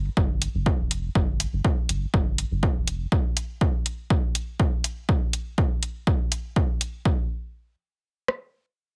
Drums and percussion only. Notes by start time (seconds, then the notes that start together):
0.17 kick
0.42 closed hi-hat
0.66 kick
0.91 closed hi-hat
1.15 kick
1.40 closed hi-hat
1.65 kick
1.89 closed hi-hat
2.14 kick
2.38 closed hi-hat
2.63 kick
2.88 closed hi-hat
3.12 kick
3.37 closed hi-hat
3.61 kick
3.86 closed hi-hat
4.10 kick
4.35 closed hi-hat
4.60 kick
4.84 closed hi-hat
5.09 kick
5.33 closed hi-hat
5.58 kick
5.83 closed hi-hat
6.07 kick
6.32 closed hi-hat
6.56 kick
6.81 closed hi-hat
7.05 kick
8.28 cross-stick